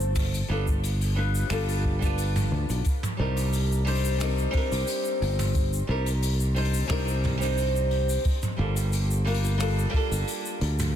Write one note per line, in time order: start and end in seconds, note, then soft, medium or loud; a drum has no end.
0.00 0.41 G1 medium
0.00 0.13 A3 medium
0.00 0.14 C4 medium
0.00 0.14 D4 medium
0.00 0.15 F4 medium
0.00 0.16 A4 loud
0.00 shaker medium
0.15 kick loud
0.15 mid tom medium
0.15 open hi-hat medium
0.15 shaker medium
0.34 open hi-hat medium
0.34 shaker medium
0.48 1.42 G1 medium
0.48 0.68 G3 medium
0.48 0.69 B3 medium
0.48 0.69 D4 medium
0.48 0.70 F4 medium
0.48 0.70 A4 medium
0.68 kick loud
0.68 shaker medium
0.83 open hi-hat medium
0.83 shaker medium
1.01 open hi-hat medium
1.01 shaker soft
1.15 1.46 G3 medium
1.15 1.46 B3 medium
1.15 1.47 D4 medium
1.15 1.47 F4 medium
1.15 1.48 B4 medium
1.35 open hi-hat soft
1.35 shaker medium
1.50 2.51 G1 medium
1.50 1.98 G3 medium
1.50 1.98 B3 medium
1.50 1.98 D4 medium
1.50 1.99 F4 medium
1.50 1.99 A4 loud
1.50 finger snap medium
1.50 open hi-hat medium
1.50 shaker medium
1.68 open hi-hat medium
1.68 shaker soft
1.84 kick medium
1.99 2.82 G3 medium
1.99 2.83 B3 medium
1.99 2.84 D4 medium
1.99 kick medium
1.99 open hi-hat soft
1.99 shaker medium
2.04 2.84 F4 medium
2.04 2.85 B4 medium
2.18 open hi-hat medium
2.18 shaker medium
2.36 mid tom medium
2.36 open hi-hat medium
2.36 shaker medium
2.52 2.64 D2 medium
2.69 2.80 B1 medium
2.69 open hi-hat medium
2.69 shaker medium
2.85 kick loud
2.85 open hi-hat medium
2.85 shaker medium
3.03 mid tom medium
3.03 shaker medium
3.17 4.46 C2 loud
3.17 3.82 G3 medium
3.17 3.82 C4 medium
3.17 3.83 D4 medium
3.17 3.83 D#4 medium
3.17 3.84 A#4 medium
3.37 open hi-hat medium
3.37 shaker medium
3.53 open hi-hat medium
3.53 shaker medium
3.72 shaker soft
3.85 4.16 G3 medium
3.85 4.16 C4 medium
3.85 4.16 D4 medium
3.85 4.17 D#4 medium
3.85 4.17 C5 medium
3.85 open hi-hat medium
3.95 open hi-hat medium
4.04 open hi-hat medium
4.04 shaker medium
4.18 4.49 G3 medium
4.18 4.50 C4 medium
4.18 4.50 D4 medium
4.18 4.51 D#4 medium
4.18 4.51 A#4 medium
4.18 finger snap medium
4.18 open hi-hat medium
4.18 shaker medium
4.38 shaker medium
4.51 5.84 G3 loud
4.51 5.84 C4 medium
4.51 5.85 D4 medium
4.51 kick medium
4.51 open hi-hat soft
4.56 5.86 D#4 medium
4.56 5.87 A#4 loud
4.72 4.83 C2 medium
4.72 open hi-hat medium
4.72 shaker medium
4.87 open hi-hat medium
4.87 shaker medium
5.05 shaker medium
5.22 5.81 G1 medium
5.22 open hi-hat medium
5.39 mid tom medium
5.39 open hi-hat medium
5.39 shaker medium
5.55 kick loud
5.55 open hi-hat medium
5.55 shaker medium
5.73 shaker soft
5.87 6.82 C2 loud
5.87 6.07 G3 medium
5.87 6.08 C4 medium
5.87 6.08 D4 medium
5.87 6.09 D#4 medium
5.87 6.09 A#4 medium
6.06 open hi-hat medium
6.06 shaker medium
6.23 open hi-hat medium
6.23 shaker medium
6.40 shaker medium
6.54 6.85 G3 medium
6.54 6.86 C4 medium
6.54 6.86 D4 medium
6.54 6.87 D#4 medium
6.54 6.87 C5 medium
6.54 open hi-hat medium
6.65 open hi-hat medium
6.74 open hi-hat medium
6.74 shaker medium
6.88 8.17 C2 medium
6.88 7.36 G3 loud
6.88 7.37 C4 medium
6.88 7.37 D4 medium
6.88 7.37 D#4 medium
6.88 7.38 A#4 loud
6.88 finger snap medium
6.88 kick loud
6.88 open hi-hat medium
6.88 shaker medium
7.08 shaker soft
7.24 kick medium
7.24 mid tom medium
7.24 open hi-hat medium
7.38 8.21 G3 medium
7.38 8.22 C4 medium
7.38 8.23 D4 medium
7.38 shaker medium
7.42 8.24 D#4 medium
7.42 8.25 C5 loud
7.42 open hi-hat medium
7.58 open hi-hat medium
7.58 shaker medium
7.76 shaker soft
7.91 open hi-hat soft
8.09 open hi-hat medium
8.09 shaker medium
8.25 kick loud
8.25 open hi-hat medium
8.25 shaker medium
8.43 mid tom medium
8.43 shaker medium
8.57 9.85 G1 loud
8.57 9.21 G3 medium
8.57 9.22 A#3 medium
8.57 9.22 D4 medium
8.57 9.22 F4 medium
8.57 9.23 A4 medium
8.76 open hi-hat medium
8.76 shaker medium
8.93 open hi-hat medium
8.93 shaker medium
9.11 shaker medium
9.25 9.55 G3 medium
9.25 9.56 A#3 medium
9.25 9.56 D4 medium
9.25 9.57 F4 medium
9.25 9.57 A#4 medium
9.25 open hi-hat soft
9.34 open hi-hat medium
9.44 open hi-hat medium
9.44 shaker medium
9.58 9.88 G3 medium
9.58 9.89 A#3 medium
9.58 9.90 D4 medium
9.58 9.90 F4 medium
9.58 9.90 A4 medium
9.58 finger snap medium
9.58 open hi-hat medium
9.58 shaker medium
9.79 shaker medium
9.90 10.96 G3 loud
9.90 10.96 A#3 medium
9.90 10.96 D4 medium
9.90 kick loud
9.94 10.96 F4 medium
9.94 10.96 A4 loud
9.94 open hi-hat soft
10.11 10.22 G1 medium
10.11 open hi-hat medium
10.11 shaker medium
10.27 open hi-hat medium
10.27 shaker medium
10.46 shaker medium
10.61 10.96 D2 medium
10.61 open hi-hat medium
10.79 mid tom medium
10.79 open hi-hat medium
10.79 shaker medium